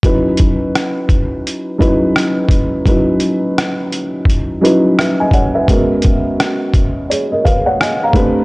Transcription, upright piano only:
0, 0, Header, 1, 2, 480
1, 0, Start_track
1, 0, Tempo, 705882
1, 24, Time_signature, 4, 2, 24, 8
1, 5743, End_track
2, 0, Start_track
2, 0, Title_t, "Upright piano"
2, 0, Program_c, 0, 0
2, 22, Note_on_c, 0, 54, 66
2, 25, Note_on_c, 0, 61, 60
2, 30, Note_on_c, 0, 63, 59
2, 34, Note_on_c, 0, 64, 64
2, 39, Note_on_c, 0, 71, 82
2, 166, Control_c, 0, 64, 127
2, 825, Note_off_c, 0, 54, 0
2, 827, Note_off_c, 0, 61, 0
2, 829, Note_off_c, 0, 63, 0
2, 831, Note_off_c, 0, 64, 0
2, 833, Note_off_c, 0, 71, 0
2, 1213, Note_on_c, 0, 54, 75
2, 1217, Note_on_c, 0, 61, 70
2, 1222, Note_on_c, 0, 63, 71
2, 1227, Note_on_c, 0, 64, 76
2, 1230, Note_on_c, 0, 71, 88
2, 1833, Note_off_c, 0, 54, 0
2, 1835, Note_off_c, 0, 61, 0
2, 1838, Note_off_c, 0, 63, 0
2, 1840, Note_off_c, 0, 64, 0
2, 1842, Note_off_c, 0, 71, 0
2, 1944, Note_on_c, 0, 54, 75
2, 1948, Note_on_c, 0, 61, 59
2, 1952, Note_on_c, 0, 63, 65
2, 1956, Note_on_c, 0, 64, 60
2, 1961, Note_on_c, 0, 71, 81
2, 2746, Note_off_c, 0, 54, 0
2, 2748, Note_off_c, 0, 61, 0
2, 2750, Note_off_c, 0, 63, 0
2, 2752, Note_off_c, 0, 64, 0
2, 2754, Note_off_c, 0, 71, 0
2, 3137, Note_on_c, 0, 54, 83
2, 3140, Note_on_c, 0, 61, 73
2, 3144, Note_on_c, 0, 63, 70
2, 3148, Note_on_c, 0, 64, 75
2, 3153, Note_on_c, 0, 71, 75
2, 3387, Note_off_c, 0, 71, 0
2, 3393, Note_on_c, 0, 76, 52
2, 3397, Note_on_c, 0, 71, 42
2, 3529, Note_off_c, 0, 76, 0
2, 3531, Note_off_c, 0, 71, 0
2, 3536, Note_on_c, 0, 80, 68
2, 3540, Note_on_c, 0, 75, 54
2, 3622, Note_off_c, 0, 80, 0
2, 3624, Note_off_c, 0, 75, 0
2, 3628, Note_on_c, 0, 78, 65
2, 3631, Note_on_c, 0, 73, 55
2, 3755, Note_off_c, 0, 54, 0
2, 3757, Note_off_c, 0, 61, 0
2, 3759, Note_off_c, 0, 63, 0
2, 3761, Note_off_c, 0, 64, 0
2, 3766, Note_off_c, 0, 78, 0
2, 3768, Note_off_c, 0, 73, 0
2, 3772, Note_on_c, 0, 76, 62
2, 3777, Note_on_c, 0, 71, 54
2, 3863, Note_on_c, 0, 56, 73
2, 3868, Note_on_c, 0, 59, 66
2, 3873, Control_c, 0, 64, 0
2, 3873, Note_on_c, 0, 61, 68
2, 3877, Note_on_c, 0, 66, 70
2, 3881, Note_on_c, 0, 70, 78
2, 4000, Note_off_c, 0, 76, 0
2, 4002, Note_off_c, 0, 71, 0
2, 4003, Control_c, 0, 64, 127
2, 4665, Note_off_c, 0, 56, 0
2, 4668, Note_off_c, 0, 59, 0
2, 4670, Note_off_c, 0, 61, 0
2, 4672, Note_off_c, 0, 66, 0
2, 4674, Note_off_c, 0, 70, 0
2, 4828, Note_on_c, 0, 73, 57
2, 4831, Note_on_c, 0, 68, 47
2, 4966, Note_off_c, 0, 73, 0
2, 4968, Note_off_c, 0, 68, 0
2, 4976, Note_on_c, 0, 75, 61
2, 4981, Note_on_c, 0, 70, 48
2, 5063, Note_off_c, 0, 75, 0
2, 5065, Note_off_c, 0, 70, 0
2, 5065, Note_on_c, 0, 77, 61
2, 5068, Note_on_c, 0, 71, 57
2, 5204, Note_off_c, 0, 77, 0
2, 5206, Note_off_c, 0, 71, 0
2, 5211, Note_on_c, 0, 78, 69
2, 5215, Note_on_c, 0, 73, 57
2, 5300, Note_off_c, 0, 78, 0
2, 5302, Note_off_c, 0, 73, 0
2, 5312, Note_on_c, 0, 80, 58
2, 5316, Note_on_c, 0, 75, 51
2, 5448, Note_off_c, 0, 80, 0
2, 5450, Note_off_c, 0, 75, 0
2, 5464, Note_on_c, 0, 82, 64
2, 5468, Note_on_c, 0, 77, 54
2, 5533, Note_on_c, 0, 57, 88
2, 5536, Note_on_c, 0, 60, 74
2, 5540, Note_on_c, 0, 62, 70
2, 5545, Note_on_c, 0, 67, 71
2, 5550, Note_on_c, 0, 71, 98
2, 5554, Control_c, 0, 64, 0
2, 5677, Control_c, 0, 64, 127
2, 5686, Note_off_c, 0, 82, 0
2, 5688, Note_off_c, 0, 77, 0
2, 5743, Note_off_c, 0, 57, 0
2, 5743, Note_off_c, 0, 60, 0
2, 5743, Note_off_c, 0, 62, 0
2, 5743, Note_off_c, 0, 67, 0
2, 5743, Note_off_c, 0, 71, 0
2, 5743, End_track
0, 0, End_of_file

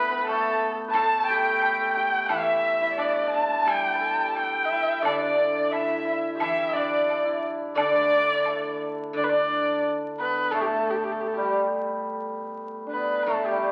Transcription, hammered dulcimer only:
0, 0, Header, 1, 2, 480
1, 0, Start_track
1, 0, Tempo, 679502
1, 677, Time_signature, 2, 2, 24, 8
1, 5483, Tempo, 688863
1, 9633, End_track
2, 0, Start_track
2, 0, Title_t, "Hammered dulcimer"
2, 0, Program_c, 0, 15
2, 0, Note_on_c, 0, 57, 46
2, 0, Note_on_c, 0, 59, 83
2, 0, Note_on_c, 0, 62, 72
2, 0, Note_on_c, 0, 64, 78
2, 0, Note_on_c, 0, 67, 50
2, 72, Note_off_c, 0, 59, 0
2, 75, Note_on_c, 0, 59, 80
2, 198, Note_off_c, 0, 57, 0
2, 201, Note_on_c, 0, 57, 82
2, 621, Note_on_c, 0, 71, 70
2, 675, Note_on_c, 0, 69, 88
2, 911, Note_off_c, 0, 67, 0
2, 918, Note_on_c, 0, 67, 97
2, 1274, Note_off_c, 0, 69, 0
2, 1277, Note_on_c, 0, 69, 72
2, 1386, Note_off_c, 0, 67, 0
2, 1389, Note_on_c, 0, 67, 71
2, 1616, Note_off_c, 0, 64, 0
2, 1619, Note_on_c, 0, 64, 82
2, 1640, Note_off_c, 0, 62, 0
2, 1982, Note_off_c, 0, 64, 0
2, 1985, Note_on_c, 0, 64, 68
2, 2104, Note_on_c, 0, 62, 71
2, 2547, Note_off_c, 0, 71, 0
2, 2584, Note_off_c, 0, 67, 0
2, 2587, Note_on_c, 0, 67, 72
2, 2790, Note_on_c, 0, 71, 62
2, 2823, Note_off_c, 0, 69, 0
2, 2826, Note_on_c, 0, 69, 82
2, 2994, Note_off_c, 0, 59, 0
2, 3086, Note_off_c, 0, 67, 0
2, 3088, Note_on_c, 0, 67, 71
2, 3330, Note_off_c, 0, 64, 0
2, 3332, Note_on_c, 0, 64, 66
2, 3334, Note_off_c, 0, 57, 0
2, 3571, Note_off_c, 0, 62, 0
2, 3573, Note_on_c, 0, 62, 74
2, 3677, Note_off_c, 0, 62, 0
2, 3680, Note_on_c, 0, 62, 73
2, 4042, Note_off_c, 0, 64, 0
2, 4045, Note_on_c, 0, 64, 69
2, 4100, Note_off_c, 0, 64, 0
2, 4103, Note_on_c, 0, 64, 52
2, 4150, Note_off_c, 0, 64, 0
2, 4153, Note_on_c, 0, 64, 57
2, 4195, Note_off_c, 0, 64, 0
2, 4198, Note_on_c, 0, 64, 47
2, 4270, Note_off_c, 0, 64, 0
2, 4272, Note_on_c, 0, 64, 59
2, 4323, Note_off_c, 0, 64, 0
2, 4326, Note_on_c, 0, 64, 50
2, 4484, Note_off_c, 0, 67, 0
2, 4487, Note_on_c, 0, 67, 59
2, 4531, Note_off_c, 0, 64, 0
2, 4534, Note_on_c, 0, 64, 73
2, 4716, Note_off_c, 0, 71, 0
2, 4766, Note_off_c, 0, 62, 0
2, 4769, Note_on_c, 0, 62, 73
2, 4893, Note_off_c, 0, 69, 0
2, 5116, Note_off_c, 0, 64, 0
2, 5119, Note_on_c, 0, 64, 63
2, 5476, Note_off_c, 0, 62, 0
2, 5478, Note_on_c, 0, 62, 89
2, 6464, Note_off_c, 0, 62, 0
2, 6467, Note_on_c, 0, 62, 81
2, 6564, Note_off_c, 0, 62, 0
2, 6566, Note_on_c, 0, 62, 74
2, 6688, Note_off_c, 0, 67, 0
2, 7178, Note_on_c, 0, 59, 74
2, 7416, Note_on_c, 0, 57, 74
2, 7517, Note_off_c, 0, 57, 0
2, 7520, Note_on_c, 0, 57, 57
2, 7547, Note_off_c, 0, 64, 0
2, 7999, Note_on_c, 0, 55, 76
2, 9036, Note_off_c, 0, 62, 0
2, 9039, Note_on_c, 0, 62, 52
2, 9089, Note_off_c, 0, 59, 0
2, 9091, Note_on_c, 0, 59, 63
2, 9322, Note_off_c, 0, 57, 0
2, 9325, Note_on_c, 0, 57, 69
2, 9367, Note_off_c, 0, 55, 0
2, 9490, Note_on_c, 0, 55, 66
2, 9633, Note_off_c, 0, 55, 0
2, 9633, Note_off_c, 0, 57, 0
2, 9633, Note_off_c, 0, 59, 0
2, 9633, Note_off_c, 0, 62, 0
2, 9633, End_track
0, 0, End_of_file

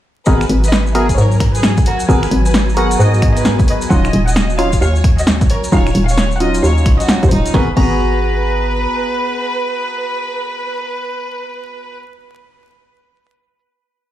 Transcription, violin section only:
0, 0, Header, 1, 2, 480
1, 0, Start_track
1, 0, Key_signature, 5, "minor"
1, 0, Tempo, 454545
1, 283, Time_signature, 4, 2, 24, 8
1, 14910, End_track
2, 0, Start_track
2, 0, Title_t, "Violin section"
2, 0, Program_c, 0, 48
2, 282, Note_on_c, 0, 71, 79
2, 282, Note_on_c, 0, 75, 97
2, 512, Note_off_c, 0, 71, 0
2, 512, Note_off_c, 0, 75, 0
2, 673, Note_on_c, 0, 71, 79
2, 673, Note_on_c, 0, 75, 93
2, 897, Note_off_c, 0, 71, 0
2, 897, Note_off_c, 0, 75, 0
2, 1002, Note_on_c, 0, 68, 77
2, 1002, Note_on_c, 0, 76, 89
2, 1176, Note_off_c, 0, 76, 0
2, 1177, Note_off_c, 0, 68, 0
2, 1242, Note_on_c, 0, 70, 76
2, 1242, Note_on_c, 0, 73, 93
2, 1472, Note_off_c, 0, 70, 0
2, 1472, Note_off_c, 0, 73, 0
2, 1634, Note_on_c, 0, 68, 81
2, 1635, Note_on_c, 0, 71, 94
2, 1857, Note_off_c, 0, 68, 0
2, 1858, Note_off_c, 0, 71, 0
2, 1962, Note_on_c, 0, 66, 77
2, 1962, Note_on_c, 0, 70, 88
2, 2137, Note_off_c, 0, 66, 0
2, 2137, Note_off_c, 0, 70, 0
2, 2202, Note_on_c, 0, 80, 100
2, 2203, Note_on_c, 0, 71, 78
2, 2433, Note_off_c, 0, 71, 0
2, 2433, Note_off_c, 0, 80, 0
2, 2594, Note_on_c, 0, 71, 78
2, 2594, Note_on_c, 0, 80, 94
2, 2817, Note_off_c, 0, 71, 0
2, 2817, Note_off_c, 0, 80, 0
2, 2922, Note_on_c, 0, 78, 80
2, 2923, Note_on_c, 0, 82, 93
2, 3097, Note_off_c, 0, 78, 0
2, 3097, Note_off_c, 0, 82, 0
2, 3162, Note_on_c, 0, 75, 79
2, 3163, Note_on_c, 0, 78, 92
2, 3393, Note_off_c, 0, 75, 0
2, 3393, Note_off_c, 0, 78, 0
2, 3553, Note_on_c, 0, 71, 80
2, 3553, Note_on_c, 0, 75, 95
2, 3777, Note_off_c, 0, 71, 0
2, 3777, Note_off_c, 0, 75, 0
2, 3882, Note_on_c, 0, 71, 79
2, 3882, Note_on_c, 0, 75, 92
2, 4056, Note_off_c, 0, 71, 0
2, 4057, Note_off_c, 0, 75, 0
2, 4122, Note_on_c, 0, 75, 80
2, 4122, Note_on_c, 0, 78, 102
2, 4352, Note_off_c, 0, 75, 0
2, 4352, Note_off_c, 0, 78, 0
2, 4513, Note_on_c, 0, 78, 99
2, 4514, Note_on_c, 0, 75, 79
2, 4737, Note_off_c, 0, 75, 0
2, 4737, Note_off_c, 0, 78, 0
2, 4843, Note_on_c, 0, 77, 79
2, 4843, Note_on_c, 0, 80, 96
2, 5017, Note_off_c, 0, 77, 0
2, 5017, Note_off_c, 0, 80, 0
2, 5083, Note_on_c, 0, 73, 79
2, 5083, Note_on_c, 0, 77, 98
2, 5313, Note_off_c, 0, 73, 0
2, 5313, Note_off_c, 0, 77, 0
2, 5474, Note_on_c, 0, 66, 80
2, 5474, Note_on_c, 0, 75, 96
2, 5697, Note_off_c, 0, 66, 0
2, 5697, Note_off_c, 0, 75, 0
2, 5803, Note_on_c, 0, 70, 79
2, 5803, Note_on_c, 0, 73, 91
2, 5977, Note_off_c, 0, 70, 0
2, 5977, Note_off_c, 0, 73, 0
2, 6043, Note_on_c, 0, 73, 77
2, 6044, Note_on_c, 0, 77, 105
2, 6273, Note_off_c, 0, 73, 0
2, 6273, Note_off_c, 0, 77, 0
2, 6435, Note_on_c, 0, 73, 83
2, 6435, Note_on_c, 0, 77, 100
2, 6657, Note_off_c, 0, 73, 0
2, 6658, Note_off_c, 0, 77, 0
2, 6763, Note_on_c, 0, 75, 79
2, 6763, Note_on_c, 0, 78, 91
2, 6937, Note_off_c, 0, 75, 0
2, 6937, Note_off_c, 0, 78, 0
2, 7002, Note_on_c, 0, 73, 79
2, 7003, Note_on_c, 0, 77, 93
2, 7233, Note_off_c, 0, 73, 0
2, 7233, Note_off_c, 0, 77, 0
2, 7395, Note_on_c, 0, 66, 84
2, 7395, Note_on_c, 0, 75, 95
2, 7618, Note_off_c, 0, 66, 0
2, 7618, Note_off_c, 0, 75, 0
2, 7723, Note_on_c, 0, 63, 78
2, 7723, Note_on_c, 0, 72, 96
2, 7897, Note_off_c, 0, 63, 0
2, 7897, Note_off_c, 0, 72, 0
2, 7963, Note_on_c, 0, 71, 95
2, 8120, Note_off_c, 0, 71, 0
2, 8202, Note_on_c, 0, 71, 99
2, 12605, Note_off_c, 0, 71, 0
2, 14910, End_track
0, 0, End_of_file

